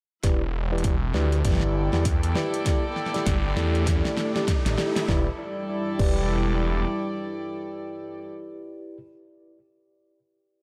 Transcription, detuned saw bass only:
0.24 1.13 E1 medium
1.14 1.43 D2 loud
1.45 1.90 G1 medium
1.93 2.21 E2 medium
2.23 2.34 E2 medium
3.27 3.55 G1 loud
3.57 4.02 E2 loud
4.66 4.76 A1 medium
5.08 5.28 E1 loud
5.99 6.86 E1 loud

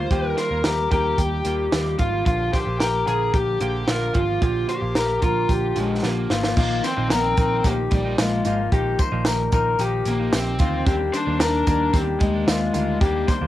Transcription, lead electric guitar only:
0.00 0.37 C5 medium
0.38 0.65 A#4 medium
0.65 0.90 G4 medium
0.92 1.99 G4 medium
1.99 2.25 F4 medium
2.26 2.53 F4 medium
2.53 2.79 G4 medium
2.80 3.07 G4 medium
3.07 3.32 G#4 medium
3.34 3.60 G4 medium
3.62 3.89 G4 medium
3.88 4.16 A#4 medium
4.15 4.41 F4 medium
4.43 4.69 F4 medium
4.69 5.19 G4 medium
5.22 5.99 F4 medium
5.78 6.02 G#3 medium
6.04 6.57 A#3 medium
6.58 6.85 A#3 loud
6.84 7.09 C4 loud
7.10 7.66 C4 loud
7.64 7.72 A#3 loud
7.92 8.19 G3 medium
8.19 8.56 G#3 medium
10.08 10.35 A#3 medium
10.35 10.86 C4 medium
10.87 10.94 C4 medium
11.14 11.38 D4 loud
11.40 11.93 D4 loud
11.94 12.01 C4 loud
12.20 13.01 G#3 loud
13.01 13.27 A#3 loud
13.28 13.35 A#3 loud

